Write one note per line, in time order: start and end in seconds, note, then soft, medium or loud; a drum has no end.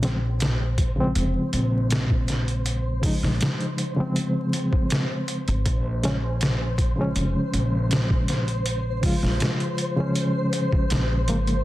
0.00 1.12 A#1 medium
0.00 0.15 C#3 medium
0.00 0.15 F3 medium
0.00 0.15 G#3 medium
0.00 11.64 C5 medium
0.00 closed hi-hat medium
0.05 0.16 C4 medium
0.05 snare soft
0.40 snare loud
0.40 closed hi-hat medium
0.78 kick medium
0.78 closed hi-hat medium
0.96 2.98 C#3 medium
0.96 2.98 F3 medium
0.96 2.99 G#3 medium
1.00 3.00 C4 loud
1.15 1.33 F1 medium
1.15 closed hi-hat medium
1.53 3.00 A#1 medium
1.53 closed hi-hat medium
1.91 snare loud
1.91 closed hi-hat medium
2.10 kick medium
2.28 snare soft
2.28 closed hi-hat medium
2.48 closed hi-hat soft
2.66 closed hi-hat medium
3.01 3.92 C#3 medium
3.01 3.93 F3 medium
3.01 3.93 G#3 medium
3.01 kick medium
3.01 open hi-hat medium
3.06 3.94 D#4 medium
3.23 3.38 A#1 medium
3.23 snare soft
3.41 snare loud
3.41 closed hi-hat medium
3.61 closed hi-hat soft
3.78 closed hi-hat medium
3.96 5.62 C#3 medium
3.96 5.63 F3 medium
3.96 5.64 G#3 medium
4.00 5.64 C4 loud
4.16 closed hi-hat medium
4.53 closed hi-hat medium
4.73 kick medium
4.90 snare loud
4.90 closed hi-hat medium
5.28 closed hi-hat medium
5.48 5.63 G#1 medium
5.48 closed hi-hat soft
5.66 7.12 A#1 medium
5.66 kick loud
5.66 closed hi-hat medium
6.03 6.15 C#3 medium
6.03 6.15 F3 medium
6.03 6.16 G#3 medium
6.03 6.16 C#4 loud
6.03 snare soft
6.03 closed hi-hat medium
6.41 snare loud
6.41 closed hi-hat medium
6.78 kick medium
6.78 closed hi-hat medium
6.96 8.98 C#3 medium
6.96 8.99 F3 medium
6.96 8.99 G#3 medium
7.01 9.00 C#4 loud
7.16 7.33 F1 medium
7.16 closed hi-hat medium
7.53 9.00 A#1 medium
7.53 closed hi-hat medium
7.91 snare loud
7.91 closed hi-hat medium
8.10 kick medium
8.28 snare soft
8.28 closed hi-hat medium
8.48 closed hi-hat soft
8.66 closed hi-hat medium
9.01 9.92 C#3 medium
9.01 9.93 F3 medium
9.01 9.93 G#3 medium
9.01 kick medium
9.01 open hi-hat medium
9.06 9.94 F4 medium
9.23 9.38 A#1 medium
9.23 snare soft
9.40 snare loud
9.40 closed hi-hat medium
9.60 closed hi-hat soft
9.78 closed hi-hat medium
9.96 11.24 C#3 medium
9.96 11.24 F3 medium
9.96 11.25 G#3 medium
10.00 11.26 C#4 loud
10.15 closed hi-hat medium
10.53 closed hi-hat medium
10.73 kick medium
10.90 11.29 A#1 medium
10.90 snare loud
10.90 closed hi-hat medium
11.27 11.61 G#1 medium
11.27 11.64 C#3 medium
11.27 11.64 F3 medium
11.27 11.64 G#3 medium
11.27 11.64 A#3 medium
11.27 closed hi-hat medium
11.47 closed hi-hat soft